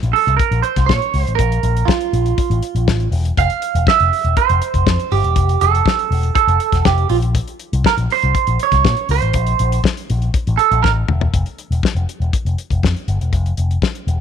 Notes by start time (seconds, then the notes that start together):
0.03 A#1, closed hi-hat
0.13 A4, open hi-hat
0.27 C2, closed hi-hat
0.37 A#4, kick, closed hi-hat
0.51 A#1, closed hi-hat
0.62 C5, closed hi-hat
0.76 C2, kick, snare, closed hi-hat
0.86 A#2 C#5, kick, snare
1.02 closed hi-hat
1.14 C#2, open hi-hat
1.21 C5
1.27 A1, closed hi-hat
1.35 A#1 A#4, kick
1.39 closed hi-hat
1.52 closed hi-hat
1.63 A#1, closed hi-hat
1.77 closed hi-hat
1.85 F4, kick, snare
2.01 closed hi-hat
2.13 A#1, closed hi-hat
2.26 closed hi-hat
2.38 kick, closed hi-hat
2.50 A1, closed hi-hat
2.62 closed hi-hat
2.75 A#1, closed hi-hat
2.88 A1, kick, snare
3.00 closed hi-hat
3.11 E1, open hi-hat
3.25 closed hi-hat
3.37 F1 F5, kick, closed hi-hat
3.50 closed hi-hat
3.62 closed hi-hat
3.75 E1, closed hi-hat
3.87 E5, kick, snare
4.00 F1, closed hi-hat
4.13 open hi-hat
4.24 E1, closed hi-hat
4.37 C5, kick, closed hi-hat
4.49 F1, closed hi-hat
4.62 closed hi-hat
4.74 F1, kick, closed hi-hat
4.87 F2, kick, snare
4.99 closed hi-hat
5.12 G1 G4, open hi-hat
5.24 E1, closed hi-hat
5.36 F1, kick, closed hi-hat
5.49 closed hi-hat
5.61 F1 A4, closed hi-hat
5.75 closed hi-hat
5.86 kick, snare
5.99 closed hi-hat
6.11 E1, open hi-hat
6.23 closed hi-hat
6.35 A4, kick, closed hi-hat
6.47 F1, closed hi-hat
6.60 closed hi-hat
6.72 E1, kick, snare, closed hi-hat
6.85 F1 G4, kick, snare
6.98 closed hi-hat
7.09 A#1 F4, open hi-hat
7.22 closed hi-hat
7.35 kick, closed hi-hat
7.48 closed hi-hat
7.59 closed hi-hat
7.73 C2, closed hi-hat
7.84 A#4, kick, snare
7.97 A#1, closed hi-hat
8.10 C5, open hi-hat
8.22 C2, closed hi-hat
8.35 kick, closed hi-hat
8.47 A#1, closed hi-hat
8.59 C#5, closed hi-hat
8.72 C2, kick, snare, closed hi-hat
8.85 A#2, kick, snare
8.97 closed hi-hat
9.09 C#2 C5, open hi-hat
9.22 A1, closed hi-hat
9.34 A#1, kick, closed hi-hat
9.47 closed hi-hat
9.59 A#1, closed hi-hat
9.72 closed hi-hat
9.84 kick, snare
9.97 closed hi-hat
10.10 A#1, closed hi-hat
10.22 closed hi-hat
10.34 kick, closed hi-hat
10.47 A1, closed hi-hat
10.57 A4, closed hi-hat
10.71 A#1, closed hi-hat
10.83 A1 A#4, kick, snare
11.08 E1, mid tom
11.21 floor tom
11.33 F1, kick, closed hi-hat
11.46 closed hi-hat
11.58 closed hi-hat
11.71 E1, closed hi-hat
11.83 kick, snare
11.95 F1, closed hi-hat
12.09 closed hi-hat
12.20 E1, closed hi-hat
12.33 kick, closed hi-hat
12.45 F1, closed hi-hat
12.58 closed hi-hat
12.70 F1, kick, closed hi-hat
12.83 F2, kick, snare
12.96 closed hi-hat
13.08 G1, closed hi-hat
13.21 E1, closed hi-hat
13.33 F1, kick, closed hi-hat
13.46 closed hi-hat
13.57 F1, closed hi-hat
13.71 closed hi-hat
13.82 kick, snare
13.95 closed hi-hat
14.07 E1, closed hi-hat